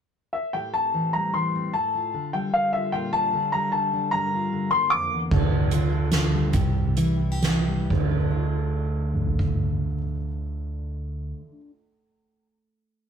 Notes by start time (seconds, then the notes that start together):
0.33 E5
0.53 A2 G4 G5
0.74 C4 A5
0.94 E3
1.13 G3 A#5
1.34 E3 C6
1.55 C4
1.73 A2 A4 A5
1.95 F4
2.14 D3
2.33 G3 G5
2.54 F5
2.73 F4 E5
2.92 A#2 F4 G5
3.13 D4 A5
3.33 D3
3.52 G3 A#5
3.72 D3 A5
3.93 D4
4.11 G2 A#4 A#5
4.34 F4
4.52 D3
4.71 A#3 C6
4.90 F2 D6
5.12 E2
5.31 D2 A4, kick, crash
5.71 D3 F4, closed hi-hat
5.92 A4
6.12 D3 F4, snare, closed hi-hat
6.33 G3
6.53 C2 C3 G4, kick, closed hi-hat
6.96 E3 E4, closed hi-hat
7.20 E4
7.32 G4
7.43 E3 E4, snare, closed hi-hat
7.67 G3
7.90 D2, kick, crash
8.00 D3
8.10 A3
8.20 D4
8.31 F4
9.14 mid tom
9.27 floor tom
9.39 kick